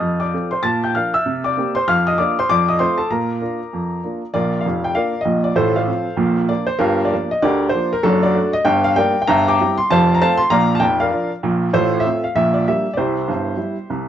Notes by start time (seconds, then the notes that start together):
Already playing: D#5 D#6
0.00 F2
0.20 D5 D6
0.33 F3 C4 A4
0.51 C5 C6
0.63 A#2 A5 A6
0.84 G5 G6
0.95 F3 D4 A#4 F5 F6
1.14 E5 E6
1.26 C3
1.44 D5 D6
1.57 A#3 C4 G4
1.75 C5 C6
1.88 F2 F5 F6
2.07 D#5 D#6
2.18 A#3 D4 F4 D5 D6
2.39 C5 C6
2.49 F2 D5 D6
2.68 D#5 D#6
2.79 A3 C4 F4 C5 C6
2.98 A4 A5
3.10 A#2 A#4 A#5
3.41 A#3 D4 F4
3.73 F2
4.04 A#3 D4 F4
4.34 A#1 A#2 F4 A#4 D5
4.61 F5
4.65 F1 F2
4.84 G5
4.95 A#3 D4 F4 A#4 D5 F5
5.21 D#5
5.25 A#1 A#2
5.44 D5
5.56 A1 A2 F4 A4 C5
5.76 A4 C5 F5
5.88 F3 C4 F4
6.17 A#1 A#2
6.49 F3 A#3 D4 D5
6.67 C5
6.79 G1 G2 F4 G4 A#4
7.05 D5
7.10 F3 A#3 D4
7.31 D#5
7.42 D2 D3 G4 A#4 D5
7.69 F3 C5
7.74 A#3 D4
7.93 A#4
8.03 F#1 F#2 D4 F#4 A4
8.23 F#4 A4 D5
8.35 A3 D4
8.53 D#5
8.65 G1 G2 G5
8.84 F5
8.96 G3 A#3 D4 A#4 D5 G5
9.22 G5
9.28 G1 G2 E5 G5 A#5
9.48 G5 A#5 D6
9.60 G3 C4 E4
9.78 C6
9.90 F1 F2 C5 F5 A5
10.15 A#5
10.21 A3 C4 F4 C5 F5 A5
10.38 C6
10.50 A#1 A#2 D5 F5 A#5
10.75 A5
10.80 F1 F2 G5
11.00 A#4 D5 F5
11.11 F3 D4 F4
11.43 A#1 A#2
11.73 A1 A2 F4 A4 C5
12.00 E5
12.06 A3 C4 F4
12.24 F5
12.35 A#1 A#2 E5
12.54 D5
12.68 G3 A#3 D4 E5
12.93 C3 C5 D5
12.98 C2 E4 G4
13.28 G1 G2
13.57 G3 E4
13.90 C2 C3